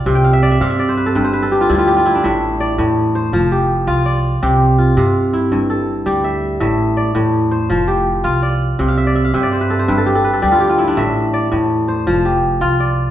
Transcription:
<<
  \new Staff \with { instrumentName = "Kora" } { \time 12/8 \key c \major \tempo 4. = 110 << { d''8 r1 r4. | e''4 d''4. c''4 g'4 f'8 d''4 | g'4 f'4. e'4 a'4 g'8 e''4 | e''4 d''4. c''4 g'4 f'8 d''4~ |
d''8 r1 r4. | e''4 d''4. c''4 g'4 f'8 d''4 | } \\ { r16 g''16 f''16 e''16 d''16 e''16 f''16 e''16 d''16 c''16 b'16 a'16 b'16 c''16 b'16 a'16 g'16 f'16 e'16 f'16 g'16 f'16 e'16 d'16~ | d'16 r1 r4. r16 | r1. | r1. |
r16 f''16 e''16 d''16 e''16 f''16 e''16 d''16 c''16 b'16 a'16 c''16 b'16 a'16 g'16 a'16 b'16 a'16 g'16 f'16 g'16 f'16 e'16 d'16~ | d'16 r1 r4. r16 | } >> }
  \new Staff \with { instrumentName = "Kora" } { \clef bass \time 12/8 \key c \major c4 r8 c4 r8 g,4 r8 g4 r8 | a,4 r8 a,4 r8 f4 r8 f'4 r8 | c4 r8 c4 r8 g,4 r8 g4 r8 | a,4 r8 a,4 r8 f4 r8 f'4 r8 |
c4 r8 c4 r8 g,4 r8 g4 r8 | a,4 r8 a,4 r8 f4 r8 f'4 r8 | }
  \new Staff \with { instrumentName = "Upright bass" } { \clef bass \time 12/8 \key c \major c,4. g,4. g,,4. d,4. | a,,4. e,4. f,,4. c,4. | c,4. g,4. g,,4. d,4. | a,,4. e,4. f,,4. c,4. |
c,4. g,4. g,,4. d,4. | a,,4. e,4. f,,4. c,4. | }
>>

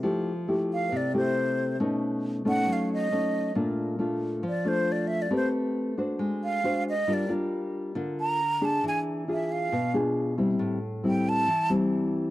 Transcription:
<<
  \new Staff \with { instrumentName = "Flute" } { \time 4/4 \key f \major \tempo 4 = 136 r4. f''8 d''8 c''4. | r4. fis''8 f''8 dis''4. | r2 d''8 c''8 \tuplet 3/2 { d''8 e''8 d''8 } | c''8 r2 f''4 ees''8 |
d''8 r2 bes''4 a''8 | gis''8 r8 e''8 f''4 r4. | r4 g''8 a''4 r4. | }
  \new Staff \with { instrumentName = "Nylon-string guitar" } { \time 4/4 \key f \major << { <a e' g'>8 r8 <a e' g'>4. <a e' g'>4. | <a cis' dis'>4. <a cis' dis'>4. <a cis' dis'>4 | <a d' f'>4 <a d' f'>4 r8 <a d' f'>4. | <c' g' b'>4. <d' ges' c''>4. <d' ges' c''>8 r8 |
<d' f' bes'>8 <d' f' bes'>4. <d' f' bes'>4 r8 <d' aes'>8~ | <d' aes'>4 <d' f' gis'>4 r8 <d' f' gis'>4 <g c' e'>8~ | <g c' e'>8 r8 <g c' e'>4 r8 <g c' e'>4. | } \\ { f2 c2 | b,2 fis2 | bes,2 f2 | a2 aes2 |
g2 d2 | e2 b,2 | a,2 e2 | } >> }
>>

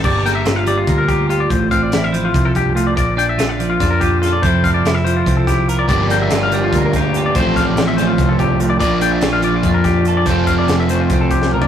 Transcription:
<<
  \new Staff \with { instrumentName = "Clean electric guitar" } { \time 7/8 \key f \major \tempo 4 = 144 d''8 g''16 e''8 f''16 d''16 f'8 bes'16 g'8 f'16 d''16 | c''8 f''16 d''8 e''16 c''16 f'8 a'16 g'8 f'16 d''16 | d''8 g''16 e''8 f''16 d''16 f'8 bes'16 g'8 f'16 d''16 | c''8 f''16 d''8 e''16 c''16 f'8 a'16 g'8 f'16 d''16 |
d''8 g''16 e''8 f''16 d''16 f'8 bes'16 g'8 f'16 d''16 | c''8 f''16 d''8 e''16 c''16 f'8 a'16 g'8 f'16 d''16 | d''8 g''16 e''8 f''16 d''16 f'8 bes'16 g'8 f'16 d''16 | c''8 f''16 d''8 e''16 c''16 f'8 a'16 g'8 f'16 d''16 | }
  \new Staff \with { instrumentName = "Clean electric guitar" } { \time 7/8 \key f \major << { bes8 bes8 f'4 bes8 f'8 g'8 | r8 c'8 e'2~ e'8 | r8 d'8 f'4 d'8 f'8 a'8 | <f c' e' a'>8 c'8 e'4 c'8 e'8 bes'8 |
r8 bes8 f'4 bes8 f'8 g'8 | <f c' a'>8 c'2. | r8 d'8 f'4 d'8 f'8 a'8 | <f c' a'>8 c'4. c'4 bes'8 | } \\ { g,4. g2 | a,4. f8 f,8 g,8 a,8 | bes,4. f2 | f,4. f2 |
g,4. g2 | a,4. f8 f,8 g,8 a,8 | bes,4. f2 | f,4. f2 | } >> }
  \new Staff \with { instrumentName = "Overdriven electric guitar" } { \time 7/8 \key f \major r2. r8 | r2. r8 | r2. r8 | r2. r8 |
<g, d g bes d'>2.~ <g, d g bes d'>8 | <a, f a c' f'>2.~ <a, f a c' f'>8 | <bes, f bes d' f'>2.~ <bes, f bes d' f'>8 | <f a c' f'>2.~ <f a c' f'>8 | }
  \new Staff \with { instrumentName = "Picked electric bass" } { \clef bass \time 7/8 \key f \major g,,4 g,,4 d,4. | a,,4 a,,4 c,4. | bes,,4 bes,,4 f,4. | f,,4 f,,4 c,4. |
g,,4 g,,4 d,4. | a,,4 a,,4 c,4. | bes,,4 bes,,4 f,4. | f,,4 f,,4 c,4. | }
  \new DrumStaff \with { instrumentName = "Drums" } \drummode { \time 7/8 <cymc bd>8 <hh sn>8 <hh sn>8 hh8 <hh bd>8 <hh bd>8 hh8 | <hh bd>8 <hh bd>8 <hh sn>8 hh8 <hh bd>8 <hh bd>8 hh8 | <hh bd>8 hh8 <hh sn>8 hh8 <hh bd sn>8 <hh bd>8 <hh sn>8 | <hh bd>8 <hh bd>8 <hh sn>8 hh8 <hh bd>8 <hh bd sn>8 hh8 |
<hh bd>8 <hh sn>8 <hh sn>8 hh8 <hh bd>8 <hh bd sn>8 hh8 | <hh bd>8 <hh bd sn>8 <hh sn>8 <hh sn>8 <hh bd>8 <hh bd>8 hh8 | <hh bd>8 hh8 <hh sn>8 hh8 <hh bd>8 <hh bd sn>8 hh8 | <hh bd>8 <hh bd>8 <hh sn>8 hh8 <hh bd>8 <hh bd>16 sn16 toml16 tomfh16 | }
>>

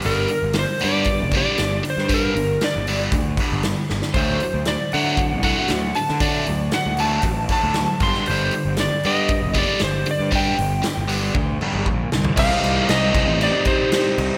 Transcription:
<<
  \new Staff \with { instrumentName = "Electric slide guitar" } { \time 4/4 \key g \minor \tempo 4 = 117 bes'4 c''8 d''4 d''4 c''8 | bes'4 d''4 r2 | c''4 d''8 fis''4 fis''4 a''8 | d''4 fis''8 a''4 a''4 c'''8 |
c''4 d''8 ees''4 d''8 c''8 d''8 | g''2. r4 | \key c \dorian f''4 ees''4 d''8 c''4. | }
  \new Staff \with { instrumentName = "Tonewheel organ" } { \time 4/4 \key g \minor r1 | r1 | r1 | r1 |
r1 | r1 | \key c \dorian <c' ees' g' ees''>1 | }
  \new Staff \with { instrumentName = "Overdriven electric guitar" } { \clef bass \time 4/4 \key g \minor <g, d g>8 <g, d>8 <g, d>8 <g, d g>8 <g, d>8 <g, d g>8 <g, d>8 <g, d>8 | <g, d g>8 <g, d>8 <g, d>8 <g, d g>8 <g, d>8 <g, d g>8 <g, d>8 <g, d>8 | <d fis a>8 <d fis>8 <d fis>8 <d fis a>8 <d fis>8 <d fis a>8 <d fis>8 <d fis>8 | <d fis a>8 <d fis>8 <d fis>8 <d fis a>8 <d fis>8 <d fis a>8 <d fis>8 <g, d g>8 |
<g, d g>8 <g, d>8 <g, d>8 <g, d g>8 <g, d>8 <g, d g>8 <g, d>8 <g, d>8 | <g, d g>8 <g, d>8 <g, d>8 <g, d g>8 <g, d>8 <g, d g>8 <g, d>8 <g, d>8 | \key c \dorian <c g c' ees' g'>1 | }
  \new Staff \with { instrumentName = "Picked electric bass" } { \clef bass \time 4/4 \key g \minor g,,8 r16 g,,8 r16 g,8. fis,,8 r16 g,,8 r16 g,16~ | g,8 g,,8 r16 g,,8. d,8 r16 g,,8 r16 g,,16 r16 | d,8 r16 d,8 r16 d8. c,8 r16 d,8 r16 d16~ | d8 d,8 r16 d,8. a,,8 r16 d,8 r16 g,,16 r16 |
g,,8 r16 g,,8 r16 g,8. fis,,8 r16 g,,8 r16 g,16~ | g,8 g,,8 r16 g,,8. d,8 r16 g,,16 bes,,8 c,8 | \key c \dorian c,16 r16 c,8 c,8 c,16 a,,8 r4 r16 c,16 r16 | }
  \new DrumStaff \with { instrumentName = "Drums" } \drummode { \time 4/4 hho8 hho8 <hho sn>8 hho8 <hho bd>8 <hho bd>8 <hho sn>8 hho16 sn16 | <hho bd>8 hho8 <hho sn>8 hho8 <hho bd>8 <hho bd>8 <hho sn>8 sn16 sn16 | <hho bd>8 hho8 <hho sn>8 hho8 <hho bd>8 <hho bd>8 <hho sn>8 hho16 sn16 | <hho bd>8 hho8 <hho sn>8 hho8 <hho bd>8 <hho bd>8 <hho sn>8 <hho bd>16 sn16 |
hho8 hho8 <hho sn>8 hho8 <hho bd>8 <hho bd>8 <hho sn>8 hho8 | <hho bd>8 hho8 <hho sn>8 hho8 <bd tommh>8 toml16 toml16 bd8 sn16 tomfh16 | <cymc bd>8 cymc8 <cymc sn>8 <cymc bd>8 cymc8 <cymc bd>8 <cymc sn>8 cymc8 | }
>>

